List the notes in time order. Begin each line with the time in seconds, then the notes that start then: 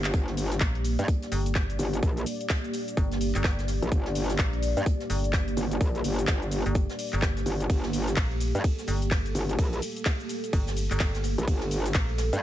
Already playing: G1 A#3 G4 C5
0.04 clap, closed hi-hat, shaker
0.14 G1 D5, kick, closed hi-hat, shaker
0.28 snare, closed hi-hat
0.37 closed hi-hat, open hi-hat, shaker
0.52 snare, closed hi-hat, shaker
0.61 A#1, kick, snare, clap, closed hi-hat, shaker
0.75 closed hi-hat
0.85 closed hi-hat, open hi-hat, shaker
0.99 G2, closed hi-hat, shaker
1.08 kick, closed hi-hat, shaker
1.23 snare, closed hi-hat, shaker
1.32 G1, closed hi-hat, open hi-hat, shaker
1.46 closed hi-hat, shaker
1.55 kick, snare, clap, closed hi-hat, shaker
1.70 closed hi-hat, shaker
1.78 G1, closed hi-hat, open hi-hat, shaker
1.93 closed hi-hat, shaker
2.03 A#1, kick, closed hi-hat, shaker
2.17 closed hi-hat, shaker
2.26 closed hi-hat, open hi-hat, shaker
2.41 closed hi-hat, shaker
2.50 kick, snare, clap, closed hi-hat, shaker
2.64 closed hi-hat, shaker
2.74 closed hi-hat, open hi-hat, shaker
2.88 closed hi-hat, shaker
2.97 G1, kick, closed hi-hat, shaker
3.12 snare, closed hi-hat, shaker
3.20 open hi-hat, shaker
3.35 G1, clap, closed hi-hat, shaker
3.44 kick, snare, clap, closed hi-hat, shaker
3.59 snare, closed hi-hat, shaker
3.67 snare, closed hi-hat, open hi-hat, shaker
3.82 A#1, closed hi-hat, shaker
3.92 G1, kick, closed hi-hat, shaker
4.06 snare, closed hi-hat
4.15 closed hi-hat, open hi-hat, shaker
4.29 snare, closed hi-hat, shaker
4.38 A#1, kick, snare, clap, closed hi-hat, shaker
4.53 closed hi-hat
4.62 closed hi-hat, open hi-hat, shaker
4.77 G2, closed hi-hat, shaker
4.86 kick, closed hi-hat, shaker
5.00 snare, closed hi-hat, shaker
5.10 G1, closed hi-hat, open hi-hat, shaker
5.24 closed hi-hat, shaker
5.33 kick, snare, clap, closed hi-hat, shaker
5.48 closed hi-hat, shaker
5.57 G1, closed hi-hat, open hi-hat, shaker
5.71 closed hi-hat, shaker
5.81 A#1, kick, closed hi-hat, shaker
5.95 closed hi-hat, shaker
6.04 G1, closed hi-hat, open hi-hat, shaker
6.19 closed hi-hat, shaker
6.27 G1, kick, snare, clap, closed hi-hat, shaker
6.42 closed hi-hat, shaker
6.51 closed hi-hat, open hi-hat, shaker
6.66 G1, closed hi-hat, shaker
6.75 kick, closed hi-hat, shaker
6.89 snare, closed hi-hat, shaker
6.98 open hi-hat, shaker
7.13 G1, clap, closed hi-hat, shaker
7.22 kick, snare, clap, closed hi-hat, shaker
7.37 snare, closed hi-hat, shaker
7.46 G1, open hi-hat, shaker
7.60 closed hi-hat, shaker
7.69 G1 A4, kick, closed hi-hat, ride, shaker
7.83 snare, closed hi-hat
7.93 closed hi-hat, open hi-hat, shaker
8.07 snare, closed hi-hat, shaker
8.17 A#1, kick, snare, clap, closed hi-hat, ride, shaker
8.31 closed hi-hat
8.40 closed hi-hat, open hi-hat, shaker
8.55 G2, closed hi-hat, shaker
8.64 kick, closed hi-hat, ride, shaker
8.79 snare, closed hi-hat, shaker
8.87 G1, closed hi-hat, open hi-hat, shaker
9.02 closed hi-hat, shaker
9.11 kick, snare, clap, closed hi-hat, ride, shaker
9.26 closed hi-hat, shaker
9.35 G1, closed hi-hat, open hi-hat, shaker
9.49 closed hi-hat, shaker
9.59 A#1, kick, closed hi-hat, ride, shaker
9.73 closed hi-hat, shaker
9.82 closed hi-hat, open hi-hat, shaker
9.96 closed hi-hat, shaker
10.05 kick, snare, clap, closed hi-hat, ride, shaker
10.20 closed hi-hat, shaker
10.29 closed hi-hat, open hi-hat, shaker
10.44 closed hi-hat, shaker
10.53 G1, kick, closed hi-hat, ride, shaker
10.67 snare, closed hi-hat, shaker
10.77 open hi-hat, shaker
10.91 G1, clap, closed hi-hat, shaker
11.00 kick, snare, clap, closed hi-hat, ride, shaker
11.15 snare, closed hi-hat, shaker
11.23 snare, closed hi-hat, open hi-hat, shaker
11.38 A#1, closed hi-hat, shaker
11.48 G1, kick, closed hi-hat, ride, shaker
11.61 snare, closed hi-hat
11.71 closed hi-hat, open hi-hat, shaker
11.86 snare, closed hi-hat, shaker
11.94 A#1, kick, snare, clap, closed hi-hat, ride, shaker
12.09 closed hi-hat
12.18 snare, closed hi-hat, open hi-hat, shaker
12.33 G2, closed hi-hat, shaker